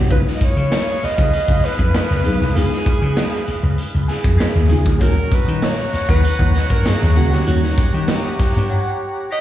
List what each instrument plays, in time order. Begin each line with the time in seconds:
Already playing: slap bass C2, alto saxophone G4
0.09 slap bass C#2, tine electric piano G#3 B3 D#4 F4, clean electric guitar D#4 G#4 B4 F5, horn section G#4 B4 F5, alto saxophone B4, kick, closed hi-hat
0.24 muted clean electric guitar stroke, snare
0.35 alto saxophone D#5
0.41 alto saxophone C#5, muted clean electric guitar stroke, muted slap bass stroke, kick, closed hi-hat
0.56 slap bass C#3, clean electric guitar D#4 G#4 B4 F5
0.71 muted clean electric guitar stroke, snare, closed hi-hat
0.86 muted clean electric guitar stroke, closed hi-hat
1.03 alto saxophone D#5, muted slap bass stroke, snare, closed hi-hat
1.17 slap bass C#2, clean electric guitar D#4 G#4 B4 F5, kick, closed hi-hat
1.32 muted clean electric guitar stroke, closed hi-hat
1.48 slap bass C#2, clean electric guitar D#4 G#4 B4 F5, kick
1.62 alto saxophone B4, muted clean electric guitar stroke, snare, closed hi-hat
1.79 slap bass F2, kick
1.93 muted clean electric guitar stroke, snare, closed hi-hat
2.09 slap bass C#2, muted clean electric guitar stroke, snare
2.23 slap bass B1, tine electric piano G#3 B3 D#4 G#4, clean electric guitar D#4 G#4 B4 F5, closed hi-hat
2.39 slap bass C2, muted clean electric guitar stroke, snare
2.53 slap bass C#2, tine electric piano G#3 B3 D#4 F4, clean electric guitar D#4 G#4 B4 F5, alto saxophone G#4, closed hi-hat
2.70 muted clean electric guitar stroke, snare
2.86 muted clean electric guitar stroke, muted slap bass stroke, kick, closed hi-hat
3.01 slap bass C#3, clean electric guitar D#4 G#4 B4 G#5
3.16 snare, closed hi-hat
3.30 clean electric guitar D#4 G#4 B4 F5, closed hi-hat
3.46 muted clean electric guitar stroke, muted slap bass stroke, closed hi-hat
3.62 slap bass C#2, muted clean electric guitar stroke
3.76 muted clean electric guitar stroke, closed hi-hat
3.92 slap bass C#2, muted clean electric guitar stroke
4.07 clean electric guitar D#4 G#4 B4 G#5, alto saxophone G#4, snare, closed hi-hat
4.22 slap bass F2, muted clean electric guitar stroke, kick
4.37 clean electric guitar D#4 G#4 B4 F5, snare, closed hi-hat
4.53 slap bass D#2, muted clean electric guitar stroke
4.68 slap bass C#2, tine electric piano G#3 B3 D#4 F4, clean electric guitar D#4 G#4 B4 G#5, closed hi-hat
4.84 slap bass D2, muted clean electric guitar stroke, kick
4.99 slap bass D#2, tine electric piano A#2 G3 C#4 F#4, clean electric guitar D#4 G4 C#5 F#5, alto saxophone A#4, horn section C#5 F#5 A#5, kick, closed hi-hat
5.15 muted clean electric guitar stroke
5.31 alto saxophone B4, muted clean electric guitar stroke, muted slap bass stroke, kick, closed hi-hat
5.45 slap bass D#3, clean electric guitar D#4 G4 C#5 F#5
5.61 alto saxophone C#5, muted clean electric guitar stroke, snare, closed hi-hat
5.77 muted clean electric guitar stroke, closed hi-hat
5.93 muted slap bass stroke, snare, closed hi-hat
6.08 slap bass D#2, clean electric guitar D#4 G4 C#5 F#5, alto saxophone B4, kick, closed hi-hat
6.23 muted clean electric guitar stroke, closed hi-hat
6.39 slap bass D#2, clean electric guitar D#4 G4 C#5 F#5, kick
6.54 muted clean electric guitar stroke, snare, closed hi-hat
6.70 slap bass G2, alto saxophone A#4, muted clean electric guitar stroke, kick
6.85 alto saxophone G#4, muted clean electric guitar stroke, snare, closed hi-hat
7.01 slap bass D#2, muted clean electric guitar stroke, snare
7.15 slap bass C#2, tine electric piano G3 A#3 C#4 F#4, clean electric guitar D#4 G4 C#5 F#5, closed hi-hat
7.32 slap bass D2, alto saxophone G4, muted clean electric guitar stroke, snare
7.46 slap bass D#2, tine electric piano G3 A#3 C#4 D#4, clean electric guitar D#4 G4 C#5 F#5, alto saxophone F#4, closed hi-hat
7.62 muted clean electric guitar stroke, snare
7.78 alto saxophone G4, muted slap bass stroke, muted clean electric guitar stroke, kick, closed hi-hat
7.93 slap bass D#3, clean electric guitar D#4 G4 C#5 G5
8.08 snare, closed hi-hat
8.23 clean electric guitar D#4 G4 C#5 F#5, closed hi-hat
8.38 muted clean electric guitar stroke, muted slap bass stroke, kick, snare, closed hi-hat
8.53 slap bass G2, muted clean electric guitar stroke, closed hi-hat
8.69 clean electric guitar D#4 G4 C#5 F#5
9.01 muted clean electric guitar stroke
9.16 muted clean electric guitar stroke
9.31 clean electric guitar D#4 G4 C#5 F#5, alto saxophone D#5